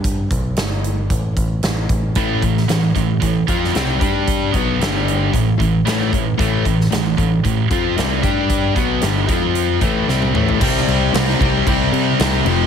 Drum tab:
CC |----------------|----------------|----------------|----------------|
HH |x-x-x-x-x-x-x-x-|x-x-x-x-x-x-x-x-|x-x-x-x-x-x-x-x-|x-x-x-x-x-x-x-x-|
SD |----o-------o---|---oo------oo---|----o-------o---|---oo-------o---|
T1 |----------------|----------------|----------------|----------------|
T2 |----------------|----------------|----------------|----------------|
FT |----------------|----------------|----------------|----------------|
BD |o-o-----o-o---o-|o-o---o-o-o---o-|o-o-----o-o---o-|o-o---o-o-o---o-|

CC |----------------|x-x-x-x-x-x-x-x-|
HH |x-x-x-x-x-x-----|----------------|
SD |----o-------o---|-o--o-------o---|
T1 |-------------o--|----------------|
T2 |--------------o-|----------------|
FT |---------------o|----------------|
BD |o-o---o---o-----|o-----o-o-------|